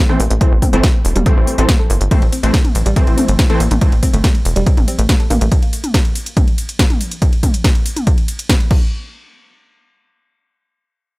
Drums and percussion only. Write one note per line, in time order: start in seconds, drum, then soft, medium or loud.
0.09 mid tom medium
0.20 open hi-hat loud
0.30 closed hi-hat medium
0.41 kick loud
0.41 closed hi-hat medium
0.62 kick medium
0.62 open hi-hat loud
0.62 mid tom medium
0.73 closed hi-hat medium
0.83 kick loud
0.83 snare loud
0.83 closed hi-hat medium
1.05 open hi-hat loud
1.16 closed hi-hat medium
1.16 mid tom medium
1.26 kick loud
1.26 closed hi-hat medium
1.47 open hi-hat loud
1.58 closed hi-hat medium
1.69 kick loud
1.69 snare loud
1.69 closed hi-hat medium
1.69 mid tom medium
1.90 open hi-hat loud
2.01 closed hi-hat medium
2.11 kick loud
2.11 closed hi-hat medium
2.11 mid tom medium
2.11 ride medium
2.22 ride medium
2.33 open hi-hat loud
2.33 ride medium
2.43 closed hi-hat medium
2.43 ride medium
2.54 kick loud
2.54 snare loud
2.54 closed hi-hat medium
2.54 ride medium
2.65 mid tom medium
2.65 ride medium
2.75 open hi-hat loud
2.75 ride medium
2.86 closed hi-hat medium
2.86 ride medium
2.96 kick loud
2.96 closed hi-hat medium
2.96 ride medium
3.07 ride medium
3.18 open hi-hat loud
3.18 mid tom medium
3.18 ride medium
3.28 closed hi-hat medium
3.28 ride medium
3.39 kick loud
3.39 snare loud
3.39 closed hi-hat medium
3.39 ride medium
3.50 ride medium
3.60 open hi-hat loud
3.60 ride medium
3.71 closed hi-hat medium
3.71 mid tom medium
3.71 ride medium
3.81 kick loud
3.81 closed hi-hat medium
3.81 ride medium
3.92 ride medium
4.03 kick medium
4.03 open hi-hat loud
4.03 ride medium
4.14 closed hi-hat medium
4.14 ride medium
4.24 kick loud
4.24 snare loud
4.24 closed hi-hat medium
4.24 mid tom medium
4.24 ride medium
4.35 ride medium
4.45 open hi-hat loud
4.45 ride medium
4.56 closed hi-hat medium
4.56 ride medium
4.67 kick loud
4.67 closed hi-hat medium
4.67 ride medium
4.77 mid tom medium
4.77 ride medium
4.88 open hi-hat loud
4.88 ride medium
4.99 closed hi-hat medium
4.99 ride medium
5.09 kick loud
5.09 snare loud
5.09 closed hi-hat medium
5.09 ride medium
5.20 ride medium
5.30 open hi-hat medium
5.30 mid tom medium
5.30 ride medium
5.41 closed hi-hat medium
5.41 ride medium
5.52 kick loud
5.52 closed hi-hat medium
5.52 ride medium
5.63 ride medium
5.73 open hi-hat loud
5.73 ride medium
5.84 closed hi-hat medium
5.84 mid tom medium
5.84 ride medium
5.94 kick loud
5.94 snare loud
5.94 closed hi-hat medium
5.94 ride medium
6.05 ride medium
6.15 open hi-hat loud
6.15 ride medium
6.26 closed hi-hat medium
6.26 ride medium
6.37 kick loud
6.37 closed hi-hat medium
6.37 mid tom medium
6.37 ride medium
6.48 ride medium
6.58 open hi-hat loud
6.58 ride medium
6.69 closed hi-hat medium
6.69 ride medium
6.79 kick loud
6.79 snare loud
6.79 closed hi-hat medium
6.79 ride medium
6.90 mid tom medium
6.90 ride medium
7.01 open hi-hat loud
7.01 ride medium
7.11 closed hi-hat medium
7.11 ride medium
7.22 kick loud
7.22 closed hi-hat medium
7.22 ride medium
7.33 ride medium
7.43 kick medium
7.43 open hi-hat loud
7.43 mid tom medium
7.43 ride medium
7.54 closed hi-hat medium
7.54 ride medium
7.64 kick loud
7.64 snare loud
7.64 closed hi-hat medium
7.64 ride medium
7.75 ride medium
7.86 open hi-hat loud
7.86 ride medium
7.96 closed hi-hat medium
7.96 mid tom medium
7.96 ride medium
8.07 kick loud
8.07 closed hi-hat medium
8.07 ride medium
8.18 ride medium
8.28 open hi-hat loud
8.28 ride medium
8.39 closed hi-hat medium
8.39 ride medium
8.49 kick loud
8.49 snare loud
8.49 closed hi-hat medium
8.49 mid tom medium
8.49 ride medium
8.60 ride medium
8.71 kick loud
8.71 crash medium